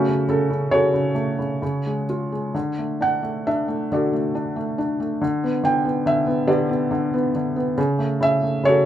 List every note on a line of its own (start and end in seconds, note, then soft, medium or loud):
0.00 0.09 C#3 medium
0.00 1.12 A3 medium
0.00 1.12 C#4 medium
0.00 0.25 F#4 medium
0.09 0.27 C#3 soft
0.29 0.49 C#3 soft
0.29 0.72 A4 medium
0.50 0.70 C#3 soft
0.71 0.92 C#3 soft
0.71 2.05 F#4 medium
0.71 2.05 A4 medium
0.71 2.04 C#5 medium
0.93 1.37 C#3 soft
1.15 1.60 A3 medium
1.39 1.61 C#3 soft
1.62 2.52 C#3 medium
1.86 2.31 G#3 soft
2.10 2.54 F4 soft
2.32 2.54 G#3 soft
2.54 3.90 D3 medium
2.78 3.21 A3 soft
3.01 3.45 D4 soft
3.01 3.48 F#5 medium
3.23 3.67 A3 soft
3.47 4.33 D4 soft
3.47 3.88 E5 medium
3.68 4.12 A3 soft
3.92 5.19 D3 soft
3.92 5.20 F#4 soft
3.92 5.20 A4 soft
3.92 4.76 D5 medium
4.13 4.55 A3 soft
4.35 4.77 D4 soft
4.56 4.98 A3 soft
4.78 5.20 D4 soft
5.00 5.21 A3 soft
5.21 5.62 D3 medium
5.44 5.83 B3 soft
5.63 6.04 D3 medium
5.63 6.03 G5 medium
5.85 6.25 B3 soft
6.06 6.46 D3 soft
6.06 6.49 E5 medium
6.27 6.68 B3 soft
6.47 6.89 D3 medium
6.47 7.73 G4 soft
6.47 7.74 B4 soft
6.47 7.30 D5 medium
6.69 7.12 B3 soft
6.91 7.34 D3 soft
7.14 7.55 B3 soft
7.35 7.77 D3 soft
7.56 7.77 B3 soft
7.78 8.19 C#3 medium
7.99 8.41 A3 soft
8.21 8.62 C#3 medium
8.21 8.62 E5 medium
8.42 8.85 A3 soft
8.63 8.86 C#3 medium
8.63 8.86 F#4 medium
8.63 8.86 A4 medium
8.63 8.86 C#5 medium